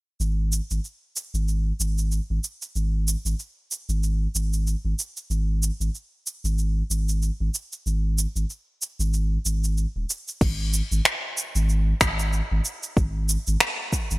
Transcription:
0.20 G#1, shaker
0.52 shaker
0.71 G#1, shaker
0.84 shaker
1.16 shaker
1.34 G#1, shaker
1.48 shaker
1.80 G#1, shaker
1.98 shaker
2.12 shaker
2.30 G#1
2.44 shaker
2.62 shaker
2.75 G#1, shaker
3.08 shaker
3.25 G#1, shaker
3.39 shaker
3.71 shaker
3.89 G#1, shaker
4.03 shaker
4.35 G#1, shaker
4.53 shaker
4.67 shaker
4.85 G#1
4.99 shaker
5.17 shaker
5.30 G#1, shaker
5.63 shaker
5.80 G#1, shaker
5.95 shaker
6.27 shaker
6.44 G#1, shaker
6.58 shaker
6.90 G#1, shaker
7.09 shaker
7.22 shaker
7.40 G#1
7.54 shaker
7.73 shaker
7.86 G#1, shaker
8.18 shaker
8.36 G#1, shaker
8.50 shaker
8.82 shaker
8.99 G#1, shaker
9.14 shaker
9.45 G#1, shaker
9.64 shaker
9.78 shaker
9.96 D#1
10.10 shaker
10.28 shaker
10.41 G#1, kick, crash, shaker
10.73 shaker
10.91 G#1, shaker
11.05 finger snap, shaker
11.37 shaker
11.55 G#1, shaker
11.69 shaker
12.01 G#1, finger snap, kick, shaker
12.19 shaker
12.33 shaker
12.52 G#1
12.65 shaker
12.83 shaker
12.97 G#1, kick, shaker
13.29 shaker
13.47 G#1, shaker
13.60 finger snap, shaker
13.93 kick, shaker
14.11 G#1, shaker

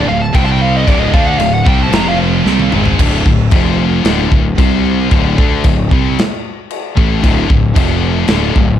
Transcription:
0.07 D1 D2 A2 F5
0.22 A5
0.34 C2 C3 G3 C4 G5, kick, china
0.45 A5
0.52 G5
0.61 F5
0.76 D#5
0.86 D1 D2 A2 D3 D5, kick, china
1.01 D#5
1.13 D2 D3 A3 D4 F5, kick
1.27 F#5
1.39 D1 D2 A2 F5, china
1.54 F#5
1.65 C2 C3 G3 C4 G5, kick
1.83 A5
1.91 F1 F2 C3 F3 A#5, snare, china
2.08 F5
2.45 C2 C3 G3 C4, snare
2.60 high tom
2.72 G#1 G#2 D#3 G#3, mid tom
2.86 floor tom
2.99 D1 D2 A2 D3, kick, crash, china
3.26 D1 D2 A2, kick
3.51 F1 F2 C3 F3, kick, china
4.05 D1 D2 A2 D3, snare, china
4.32 D1 D2 A2, kick
4.58 C2 C3 G3 C4, kick, china
5.11 D1 D2 A2 D3, kick, china
5.37 D2 D3 A3 D4, kick
5.64 D1 D2 A2, kick, china
5.91 C2 C3 G3 C4, kick
6.19 snare, china
6.71 china
6.97 A1 A2 E3 A3, kick
7.21 D1 D2 A2 D3, kick, china
7.47 D1 D2 A2, kick
7.76 F1 F2 C3 F3, kick, china
8.27 D1 D2 A2 D3, snare, china
8.31 D3
8.56 D1 D2 A2, kick

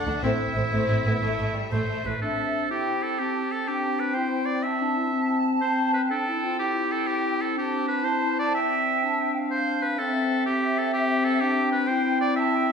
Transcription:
Already playing: D4 F#5
0.06 D2 D3 A3 D4
0.22 A1 A2 A3 C4 E4 E5
0.55 A1 A2 A3 C4
0.72 A1 A2 A3 C4
0.89 A1 A2 A3
1.05 A1 A2 A3 B3
1.21 A1 A2 A3
1.39 A1 A2 A3
1.55 G3
1.71 A1 A2 A3 C5
2.05 A1 A2 A3 B4
2.21 C4 D4 A4 E5
2.71 E4 G4 G5
3.03 A4
3.19 C4 G4 A5
3.52 A4
3.68 D4 G4 G5
4.00 B4
4.14 E4 C5 G5
4.46 D5
4.63 C4 E5 A5
4.82 D4
4.97 E4
5.13 C4
5.61 C4 C5
5.94 B4
6.08 D4 A4 G5
6.13 C4
6.28 E4
6.44 F4
6.59 E4 G4 G5
6.92 A4
7.07 G4
7.41 A4
7.56 D4 G4 A5
7.88 B4
8.03 E4 C5
8.39 D5
8.54 E5 G5
9.02 D4 A5
9.20 G5
9.35 F5
9.51 C5
9.82 B4
9.98 C4 A4 E5
10.46 C4 G4
10.79 A4
10.93 G4
11.25 A4
11.41 D4 G4 G5
11.72 B4
11.88 E4 C5
12.21 D5
12.36 E5 A5
12.53 G5

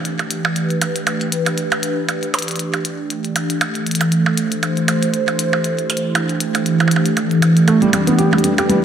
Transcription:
Already playing: E3 A3 D4 G4
0.05 closed hi-hat
0.10 B4
0.19 closed hi-hat, percussion blips
0.31 closed hi-hat
0.45 percussion blips
0.56 closed hi-hat
0.70 closed hi-hat
0.82 closed hi-hat, percussion blips
0.96 closed hi-hat
1.07 closed hi-hat, percussion blips
1.21 closed hi-hat
1.32 closed hi-hat
1.46 closed hi-hat, percussion blips
1.58 closed hi-hat
1.72 closed hi-hat, percussion blips
1.83 closed hi-hat
2.09 closed hi-hat, percussion blips
2.23 closed hi-hat
2.34 closed hi-hat, percussion blips
2.39 closed hi-hat
2.42 closed hi-hat
2.48 closed hi-hat
2.51 closed hi-hat
2.56 closed hi-hat
2.59 closed hi-hat
2.74 closed hi-hat, percussion blips
2.85 closed hi-hat
3.10 closed hi-hat
3.25 closed hi-hat
3.36 closed hi-hat, percussion blips
3.50 closed hi-hat
3.61 closed hi-hat, percussion blips
3.70 A3 D4
3.75 closed hi-hat
3.87 closed hi-hat
3.91 closed hi-hat
3.95 closed hi-hat
4.01 closed hi-hat, percussion blips
4.12 closed hi-hat
4.23 C5, percussion blips
4.31 G4
4.38 closed hi-hat
4.52 closed hi-hat
4.63 closed hi-hat, percussion blips
4.77 closed hi-hat
4.88 closed hi-hat, percussion blips
5.03 closed hi-hat
5.14 closed hi-hat
5.28 closed hi-hat, percussion blips
5.39 closed hi-hat
5.53 percussion blips
5.64 closed hi-hat
5.79 closed hi-hat
5.90 closed hi-hat, percussion blips
5.97 closed hi-hat
6.15 closed hi-hat, percussion blips
6.29 closed hi-hat
6.40 closed hi-hat
6.55 closed hi-hat, percussion blips
6.66 closed hi-hat
6.80 closed hi-hat, percussion blips
6.88 closed hi-hat, percussion blips
6.96 percussion blips
7.06 closed hi-hat
7.17 closed hi-hat, percussion blips
7.31 closed hi-hat
7.42 closed hi-hat, percussion blips
7.57 closed hi-hat
7.68 A3, closed hi-hat, percussion blips
7.82 G3, closed hi-hat
7.93 G3, closed hi-hat, percussion blips
8.04 B3 B4, closed hi-hat
8.18 G4, closed hi-hat
8.33 G3, percussion blips
8.38 closed hi-hat
8.44 G3, closed hi-hat
8.58 G4, closed hi-hat, percussion blips
8.69 G3, closed hi-hat

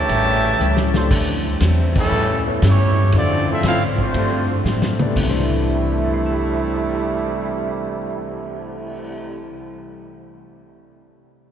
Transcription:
Already playing: C#3 E3 A3 G4 C#5 E5 A5
0.09 A1 A2 G3 C#4 E4, kick, ride
0.60 C#2 A2 G3 C#4 E4, hi-hat pedal
0.77 snare
0.94 F3 A3 D4 E4 G4 A4 C5, snare
1.10 D2 D3 F3 C4 E4, kick, crash
1.60 E2 D3 F3 C4 E4, kick, snare, hi-hat pedal, ride
1.95 C#3 E3 G3 A3 C#4 E4 A4, kick, crash
2.12 A2 G3 C#4 E4
2.46 B3 E4 A4 C#5
2.62 G2 A2 E3 G3 C#4 E4, kick, snare, hi-hat pedal, ride
2.67 A3 E4 G4 C#5
3.12 F2 D3 F3 A3 C4 D4 E4 A4 D5, kick, ride
3.16 F4
3.49 A3 C4 E4 F4 A4 E5
3.63 G#2 D3 F3 A3 C4 E4 F4 A4 F5, kick, snare, hi-hat pedal, ride
3.98 D3 F3 A3 C4 D4 F4 C5, kick
4.14 G2 F3 A3 C4 D4 G4 C5, kick, ride
4.65 G2 A2 F3 A3 C4, snare, hi-hat pedal
4.82 snare
4.99 B3 E4 A4 D5, mid tom
5.04 C3
5.11 C3 A3
5.16 C2 C3 E3 G3 A3 D4 E4, kick, crash
5.23 A3 E4
5.29 D4 C5
5.51 cymbal swell
5.68 E5
5.76 A5
5.84 C6
5.93 E6
6.04 A6
6.14 C7
6.26 E7

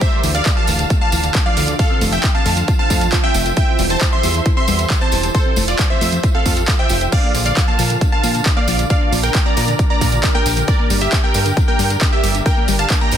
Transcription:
0.01 D3 A3 D4 F4 C5 E5, kick, closed hi-hat, tambourine
0.12 F3
0.23 D2 E3, open hi-hat, tambourine
0.35 D3 D5 F5, closed hi-hat, tambourine
0.45 A3, kick, clap, closed hi-hat, tambourine
0.57 F3 F5 A5
0.67 D1 E3, open hi-hat, tambourine
0.79 D3, closed hi-hat, tambourine
0.90 A3, kick, closed hi-hat, tambourine
1.01 F3 F5 A5
1.12 D1 E3, open hi-hat, tambourine
1.24 D3, closed hi-hat, tambourine
1.35 A3, kick, clap, closed hi-hat, tambourine
1.46 F3 D5 F5
1.57 D2 E3, open hi-hat, tambourine
1.68 D3, closed hi-hat, tambourine
1.79 F3 F4 A4 C5 F5, kick, closed hi-hat, tambourine
1.90 C4
2.01 F1 A3, open hi-hat, tambourine
2.12 F3 E5 G5, closed hi-hat, tambourine
2.24 F4, kick, clap, closed hi-hat
2.34 C4 F5 A5
2.46 F2 A3, open hi-hat, tambourine
2.57 F3, closed hi-hat, tambourine
2.68 F4, kick, closed hi-hat, tambourine
2.79 C4 F5 A5
2.90 F2 A3, kick, open hi-hat, tambourine
3.01 F3, closed hi-hat, tambourine
3.12 F4, kick, clap, closed hi-hat, tambourine
3.24 C4 E5 G5
3.34 F1 A3, open hi-hat, tambourine
3.46 F3, closed hi-hat, tambourine
3.56 E3 E4 G4 E5 G5, kick, closed hi-hat, tambourine
3.68 C4
3.79 E1 G3, open hi-hat, tambourine
3.90 E3 C5 A5, closed hi-hat, tambourine
4.01 kick, clap, closed hi-hat, tambourine
4.12 C4 E5 C6
4.23 E2 G3, open hi-hat, tambourine
4.34 E3, closed hi-hat, tambourine
4.46 E4, kick, closed hi-hat, tambourine
4.57 C4 E5 C6
4.68 E2 G3, open hi-hat, tambourine
4.79 E3, closed hi-hat, tambourine
4.90 E4, kick, clap, closed hi-hat, tambourine
5.01 C4 C5 A5
5.12 E1 G3, open hi-hat, tambourine
5.23 E3, closed hi-hat, tambourine
5.34 F3 F4 A4 C5, kick, closed hi-hat, tambourine
5.46 C4
5.56 F1 A3, open hi-hat, tambourine
5.68 F3 F4 D5, closed hi-hat, tambourine
5.79 kick, clap, closed hi-hat, tambourine
5.90 C4 C5 E5
6.01 F2 A3, open hi-hat, tambourine
6.12 F3, closed hi-hat, tambourine
6.23 F4, kick, closed hi-hat, tambourine
6.35 C4 A4 F5
6.46 F2 A3, kick, open hi-hat, tambourine
6.57 F3, closed hi-hat, tambourine
6.68 A4, kick, clap, closed hi-hat
6.79 C5 E5 G5
6.89 F1 F4, open hi-hat, tambourine
7.01 C5, closed hi-hat, tambourine
7.12 D4 A#4 D5 F5, kick, closed hi-hat, tambourine, crash
7.23 A#3
7.35 A#1 F3, open hi-hat, tambourine
7.45 D3 D5 F5, closed hi-hat, tambourine
7.57 D4, kick, clap, closed hi-hat, tambourine
7.68 A#3 F5 A5
7.79 A#2 F3, open hi-hat, tambourine
7.90 D3, closed hi-hat, tambourine
8.01 D4, kick, closed hi-hat, tambourine
8.12 A#3 F5 A5
8.23 A#2 F3, open hi-hat, tambourine
8.34 D3, closed hi-hat, tambourine
8.46 D4, kick, clap, closed hi-hat
8.57 A#3 D5 F5
8.67 A#1 F3, open hi-hat, tambourine
8.79 D3, closed hi-hat, tambourine
8.90 D4 G4 D5 F5, kick, closed hi-hat, tambourine
9.01 A#3
9.12 A#1 F3, open hi-hat, tambourine
9.23 D3 A#4 G5, closed hi-hat, tambourine
9.34 D4, kick, clap, closed hi-hat, tambourine
9.46 A#3 D5 A#5
9.57 A#2 F3, open hi-hat, tambourine
9.68 D3, closed hi-hat, tambourine
9.79 D4, kick, closed hi-hat, tambourine
9.90 A#3 D5 A#5
10.01 A#2 F3, kick, open hi-hat, tambourine
10.12 D3, closed hi-hat, tambourine
10.23 D4, kick, clap, closed hi-hat, tambourine
10.35 A#3 A#4 G5
10.46 A#1 F3, open hi-hat, tambourine
10.56 D3, closed hi-hat, tambourine
10.68 G3 D4 A#4 D5, kick, closed hi-hat, tambourine
10.79 A#3
10.90 G1 G3, open hi-hat, tambourine
11.01 D3 G4 E5, closed hi-hat, tambourine
11.12 D4, kick, clap, closed hi-hat, tambourine
11.24 A#3 A#4 G5
11.34 G2 G3, open hi-hat, tambourine
11.46 D3, closed hi-hat, tambourine
11.57 D4, kick, closed hi-hat, tambourine
11.68 A#3 A#4 G5
11.79 G2 G3, open hi-hat, tambourine
11.90 D3, closed hi-hat, tambourine
12.01 D4, kick, clap, closed hi-hat
12.12 A#3 G4 E5
12.23 G1 G3, open hi-hat, tambourine
12.35 D3, closed hi-hat, tambourine
12.46 D4 A#4 E5 G5, kick, closed hi-hat, tambourine
12.57 A#3
12.68 G1 G3, open hi-hat, tambourine
12.79 D3 F5 A5, closed hi-hat, tambourine
12.90 D4, kick, clap, closed hi-hat, tambourine
13.01 A#3 G5 A#5
13.11 G2 G3, open hi-hat, tambourine

